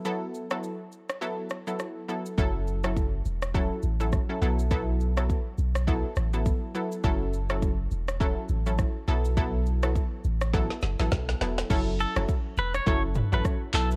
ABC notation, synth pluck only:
X:1
M:4/4
L:1/16
Q:"Swing 16ths" 1/4=103
K:F#m
V:1 name="Synth pluck"
[F,B,EA]3 [F,B,EA] z4 [F,B,EA] z2 [F,B,EA]3 [F,B,EA]2 | [F,CEA]3 [F,CEA] z4 [F,CEA] z2 [F,CEA] z [F,CEA] [F,B,EA]2 | [F,B,EA]3 [F,B,EA] z4 [F,B,EA] z2 [F,B,EA]3 [F,B,EA]2 | [F,CEA]3 [F,CEA] z4 [F,CEA] z2 [F,CEA] z2 [F,B,EA]2 |
[F,B,EA]3 [F,B,EA] z4 [F,B,EA] z2 [F,B,EA]3 [F,B,EA]2 | [F,CEA]3 [F,CEA] z4 [F,CEA] z2 [F,CEA]3 [F,B,EA]2 |]